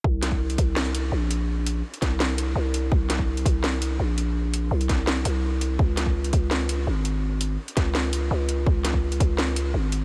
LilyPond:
<<
  \new Staff \with { instrumentName = "808-style bass" } { \clef bass \time 4/4 \key bes \dorian \tempo 4 = 167 c,4. c,4. bes,,4~ | bes,,4 r8 c,4. c,4 | c,4. c,4. bes,,4~ | bes,,4 c,4. c,4. |
des,4. des,4. aes,,4~ | aes,,4 r8 des,4. des,4 | des,4. des,4. aes,,4 | }
  \new DrumStaff \with { instrumentName = "Drums" } \drummode { \time 4/4 bd8 <hh sn>16 bd16 r16 hh16 <hh bd>8 sn8 hh8 r8 hh8 | r8 hh8 r16 hh16 <hh bd sn>8 sn8 hh8 r8 hh8 | bd8 <hh sn>16 bd16 r16 hh16 <hh bd>8 sn8 hh8 r8 hh8 | r8 hh8 r16 hh16 <hh bd sn>8 sn8 hh8 r8 hh8 |
bd8 <hh sn>16 bd16 r16 hh16 <hh bd>8 sn8 hh8 r8 hh8 | r8 hh8 r16 hh16 <hh bd sn>8 sn8 hh8 r8 hh8 | bd8 <hh sn>16 bd16 r16 hh16 <hh bd>8 sn8 hh8 r8 hh8 | }
>>